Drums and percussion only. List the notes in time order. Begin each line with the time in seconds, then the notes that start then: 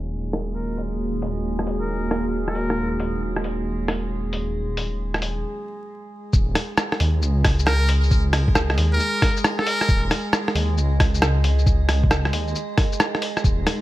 0.33 cross-stick, open hi-hat
0.78 open hi-hat
1.22 open hi-hat
1.59 cross-stick
1.67 open hi-hat
2.11 cross-stick, open hi-hat
2.48 cross-stick
2.55 open hi-hat
2.70 cross-stick
3.00 open hi-hat
3.36 cross-stick
3.44 open hi-hat
3.88 cross-stick, open hi-hat
4.33 open hi-hat
4.77 open hi-hat
5.14 cross-stick
5.22 open hi-hat
6.33 kick, shaker
6.55 cross-stick, open hi-hat
6.78 cross-stick, shaker
6.92 cross-stick
7.00 open hi-hat
7.22 shaker
7.44 kick, cross-stick, open hi-hat
7.59 shaker
7.67 cross-stick, shaker
7.89 open hi-hat
8.04 shaker
8.11 kick, shaker
8.33 cross-stick, open hi-hat
8.48 kick
8.55 cross-stick, shaker
8.70 cross-stick
8.78 open hi-hat
9.00 shaker
9.22 kick, cross-stick, open hi-hat
9.37 shaker
9.44 cross-stick, shaker
9.59 cross-stick
9.67 open hi-hat
9.81 cross-stick, shaker
9.89 kick, shaker
10.11 cross-stick, open hi-hat
10.33 cross-stick, shaker
10.48 cross-stick
10.55 open hi-hat
10.78 shaker
11.00 kick, cross-stick, open hi-hat
11.14 shaker
11.22 cross-stick, shaker
11.44 open hi-hat
11.59 shaker
11.66 kick, shaker
11.89 cross-stick, open hi-hat
12.04 kick
12.11 cross-stick, shaker
12.25 cross-stick
12.33 open hi-hat
12.48 shaker
12.55 shaker
12.77 kick, cross-stick, open hi-hat
12.92 shaker
13.00 cross-stick, shaker
13.15 cross-stick
13.22 open hi-hat
13.37 cross-stick, shaker
13.44 kick, shaker
13.67 cross-stick, open hi-hat